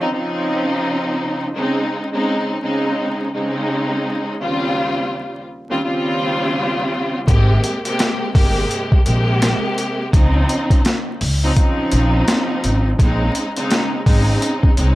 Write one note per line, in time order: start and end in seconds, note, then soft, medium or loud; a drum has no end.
0.00 0.10 C#3 medium
0.00 0.11 F3 medium
0.00 0.11 C4 medium
0.00 0.11 D#4 loud
0.11 1.46 C#3 loud
0.11 1.46 F3 loud
0.11 1.46 C4 loud
0.11 1.47 D#4 loud
1.55 2.08 C#3 loud
1.55 2.08 G#3 medium
1.55 2.08 C4 medium
1.55 2.08 D#4 loud
2.13 2.60 C#3 medium
2.13 2.60 G#3 medium
2.13 2.60 C4 medium
2.13 2.60 D#4 loud
2.62 3.30 C#3 loud
2.62 3.30 G#3 medium
2.62 3.30 C4 medium
2.62 3.30 D#4 loud
3.34 4.35 C#3 loud
3.34 4.35 G#3 medium
3.34 4.35 C4 medium
3.34 4.35 D#4 loud
4.41 5.42 D#2 loud
4.41 5.42 C#3 medium
4.41 5.42 G3 loud
4.41 5.42 C4 medium
4.41 5.42 F4 loud
5.70 5.83 D#2 medium
5.70 5.83 C#3 medium
5.70 5.83 G3 medium
5.70 5.84 C4 medium
5.70 5.84 F4 loud
5.84 7.18 D#2 loud
5.84 7.18 C#3 loud
5.84 7.18 G3 loud
5.84 7.19 C4 loud
5.84 7.19 F4 loud
7.27 7.56 G#1 loud
7.27 7.79 C3 loud
7.27 7.79 G#3 medium
7.27 7.80 A#3 medium
7.27 7.80 G4 loud
7.27 kick loud
7.27 closed hi-hat medium
7.64 closed hi-hat medium
7.84 8.31 C3 loud
7.84 8.31 G#3 medium
7.84 8.32 A#3 medium
7.84 8.32 G4 loud
7.84 closed hi-hat medium
7.99 snare loud
7.99 closed hi-hat medium
8.34 8.63 G1 medium
8.34 9.01 C3 medium
8.34 9.01 G#3 medium
8.34 9.02 A#3 medium
8.34 9.02 G4 loud
8.34 kick medium
8.34 open hi-hat medium
8.71 closed hi-hat medium
8.92 kick medium
9.05 9.52 A#1 medium
9.05 10.06 C3 loud
9.05 10.06 G#3 medium
9.05 10.06 A#3 medium
9.05 10.06 G4 loud
9.05 closed hi-hat medium
9.42 snare loud
9.42 closed hi-hat loud
9.78 closed hi-hat medium
10.13 10.42 C#2 loud
10.13 11.14 C#3 loud
10.13 11.14 F3 medium
10.13 11.14 C4 loud
10.13 11.14 D#4 loud
10.13 kick loud
10.13 closed hi-hat medium
10.49 closed hi-hat medium
10.70 kick medium
10.70 closed hi-hat medium
10.85 snare loud
10.85 closed hi-hat medium
11.21 11.49 C#2 medium
11.21 open hi-hat medium
11.43 11.53 C#3 medium
11.43 11.54 F3 medium
11.43 11.54 C4 medium
11.43 11.54 D#4 loud
11.55 12.89 C#3 loud
11.55 12.89 F3 loud
11.55 12.90 D#4 loud
11.55 kick medium
11.55 closed hi-hat medium
11.92 12.20 A#1 medium
11.92 closed hi-hat medium
12.28 snare loud
12.28 closed hi-hat loud
12.64 12.92 G#1 medium
12.64 closed hi-hat medium
12.98 13.27 A#1 loud
12.98 13.51 C#3 loud
12.98 13.51 G#3 medium
12.98 13.51 C4 medium
12.98 13.51 D#4 loud
12.98 kick loud
12.98 closed hi-hat medium
13.35 closed hi-hat medium
13.56 14.03 C#3 medium
13.56 14.03 G#3 medium
13.56 14.03 C4 medium
13.56 14.03 D#4 loud
13.56 closed hi-hat medium
13.71 snare loud
13.71 closed hi-hat medium
14.05 14.35 G#1 loud
14.05 14.73 C#3 loud
14.05 14.73 G#3 medium
14.05 14.73 C4 medium
14.05 14.73 D#4 loud
14.05 kick loud
14.05 open hi-hat medium
14.42 closed hi-hat medium
14.63 kick medium
14.77 14.95 C2 medium
14.77 14.95 G#3 medium
14.77 14.95 C4 medium
14.77 14.95 C#4 loud
14.77 14.95 D#4 loud
14.77 closed hi-hat medium